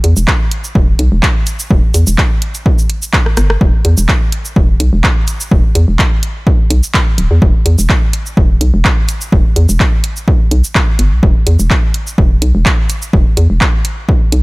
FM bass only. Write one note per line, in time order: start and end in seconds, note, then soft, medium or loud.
0.04 0.15 E2 loud
0.17 0.26 E1 medium
0.75 0.96 E1 medium
0.99 1.10 B1 medium
1.12 1.21 E1 medium
1.71 1.81 E1 loud
1.94 2.05 E2 medium
2.07 2.16 E1 medium
3.37 3.58 G1 medium
3.61 3.72 E1 loud
3.85 3.96 E2 loud
3.98 4.07 E1 medium
4.56 4.77 E1 medium
4.80 4.91 B1 medium
4.93 5.02 E1 medium
5.51 5.62 E1 medium
5.75 5.86 E2 loud
5.88 5.97 E1 medium
6.70 6.81 B1 medium
7.18 7.29 D1 medium
7.31 7.40 E2 medium
7.42 7.53 E1 loud
7.66 7.77 E2 loud
7.79 7.88 E1 medium
8.37 8.57 E1 medium
8.61 8.72 B1 medium
8.74 8.83 E1 medium
9.32 9.43 E1 loud
9.56 9.67 E2 loud
9.69 9.78 E1 medium
10.51 10.62 B1 medium
10.99 11.13 G1 medium
11.12 11.21 B1 medium
11.23 11.34 E1 loud
11.47 11.57 E2 medium
11.59 11.69 E1 medium
12.18 12.38 E1 medium
12.42 12.53 B1 medium
12.55 12.64 E1 medium
13.13 13.24 E1 loud
13.37 13.48 E2 loud
13.50 13.59 E1 medium
14.32 14.43 B1 medium